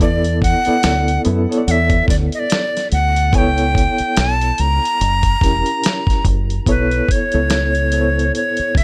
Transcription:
0.00 E2 B3 E4 A4 D5, kick, closed hi-hat
0.25 closed hi-hat
0.42 F#5, kick, closed hi-hat
0.65 B3 E4 A4 D5, muted fingered electric bass stroke, closed hi-hat
0.83 D2, snare, closed hi-hat
1.08 closed hi-hat
1.25 F#2 B3 E4 A4 B4, closed hi-hat
1.49 B3 E4 A4 C#5, closed hi-hat
1.58 D5
1.68 E2 E5 F#5, closed hi-hat
1.90 kick, closed hi-hat
2.08 D2 D5, kick, snare, closed hi-hat
2.32 D#5, closed hi-hat
2.39 D5
2.50 snare, closed hi-hat
2.77 snare, closed hi-hat
2.92 D2 F#5, closed hi-hat
3.16 closed hi-hat
3.33 C#2 B3 E4 A4 C#5 G#5, kick, closed hi-hat
3.38 G5
3.58 closed hi-hat
3.75 kick, closed hi-hat
3.98 muted fingered electric bass stroke, closed hi-hat
4.17 B1 A5, snare, closed hi-hat
4.41 closed hi-hat
4.58 C#2 A#5, closed hi-hat
4.85 closed hi-hat
5.01 F#1, closed hi-hat
5.23 kick, closed hi-hat
5.41 E1 C#4 E4 G4 A#4, kick, snare, closed hi-hat
5.66 closed hi-hat
5.84 snare, closed hi-hat
6.07 kick, snare, closed hi-hat
6.25 F#1, kick, closed hi-hat
6.50 closed hi-hat
6.66 B1 B3 E4 A4 B4 C#5, kick, closed hi-hat
6.91 closed hi-hat
7.09 C#5, kick, closed hi-hat
7.32 C#2 B3 E4 A4 C#5, closed hi-hat
7.50 snare, closed hi-hat
7.75 closed hi-hat
7.92 B3 E4 A4 C5, closed hi-hat
8.01 C#5
8.19 closed hi-hat
8.35 C#5, closed hi-hat
8.57 muted fingered electric bass stroke, closed hi-hat
8.75 C#2 E5, kick, snare, closed hi-hat

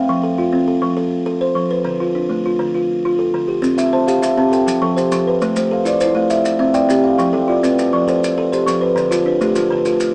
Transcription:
Already playing: F5
0.09 F3
0.23 A4
0.38 F4
0.52 C4
0.68 A4
0.82 F3
0.97 A4
1.26 A4
1.41 C5
1.55 F3
1.71 B4
1.85 D3
2.00 F4
2.15 D4
2.29 A3
2.46 F4
2.59 D3
2.74 F4
3.05 F4
3.19 A4
3.34 D3
3.48 G4
3.62 C4, maracas
3.78 C4 E5, maracas
3.93 C5 A5
4.07 G4 F5, maracas
4.22 G4 E5, maracas
4.37 C4 A5
4.52 A4 G5, maracas
4.67 F3, maracas
4.82 F3 A4
4.96 G4 C5, maracas
5.12 F3 C4, maracas
5.27 B4
5.42 A3 C5, maracas
5.56 A3 C5, maracas
5.71 A4 F5
5.85 E4 D5, maracas
6.01 E4 C5, maracas
6.15 A3 F5
6.30 E5, maracas
6.44 C4, maracas
6.59 C4 E5
6.74 D5 G5, maracas
6.89 C4 G4, maracas
7.04 F5
7.18 F3 G5, maracas
7.33 F3 A4
7.48 F4 D5
7.63 C4 B4, maracas
7.79 C4, maracas
7.93 F3 D5
8.08 A4 C5, maracas
8.24 C4, maracas
8.38 A4
8.52 G4 C5, maracas
8.67 F3 C4, maracas
8.81 B4
8.96 D3 C5, maracas
9.11 D3 F4, maracas
9.26 D4 B4
9.41 A3 G4, maracas
9.55 A3 F4, maracas
9.71 D3 B4
9.85 F4 A4, maracas
10.00 A3, maracas

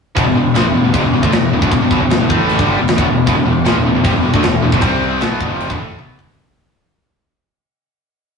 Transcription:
0.16 E1 E2 B2, kick, crash
0.26 E1 E2 B2
0.36 E1 E2 B2
0.55 A#1 A#2 F3, snare, crash
0.65 E1 E2 B2
0.75 E1 E2 B2
0.85 E1 E2 B2
0.94 F1 F2 C3, kick, crash
1.05 E1 E2 B2
1.14 E1 E2 B2
1.23 D2 D3 A3, kick
1.32 E1 E2 B2, snare, crash
1.53 E1 E2 B2
1.62 E1 E2 B2, kick
1.71 E1 E2 B2, kick, crash
1.81 E1 E2 B2
1.91 B1 B2 F#3, kick
2.01 E1 E2 B2
2.10 E1 E2 B2, snare, crash
2.20 E1 E2 B2
2.29 A1 A2 E3 A3, kick
2.49 crash
2.58 G1 G2 D3 G3, kick
2.78 E1 E2 B2
2.88 snare, crash
2.97 E1 E2 B2, kick
3.07 E1 E2 B2
3.26 E1 E2 B2, kick, crash
3.37 E1 E2 B2
3.46 E1 E2 B2
3.65 A#1 A#2 F3, snare, crash
3.75 E1 E2 B2
3.85 E1 E2 B2
3.94 E1 E2 B2
4.04 F1 F2 C3, kick, crash
4.13 E1 E2 B2
4.23 E1 E2 B2
4.34 D2 D3 A3, kick
4.42 E1 E2 B2, snare, crash
4.62 E1 E2 B2
4.72 E1 E2 B2, kick
4.81 C2 C3 G3 C4, kick, crash
5.21 B1 B2 F#3 B3, snare, crash
5.40 E1 E2 B2, kick
5.50 F1 F2 C3 F3
5.60 crash
5.70 E1 E2 B2, kick
5.78 A1 A2 E3 A3
5.98 B1 B2 F#3 B3, high tom
6.18 E1 E2 B2 E3, kick

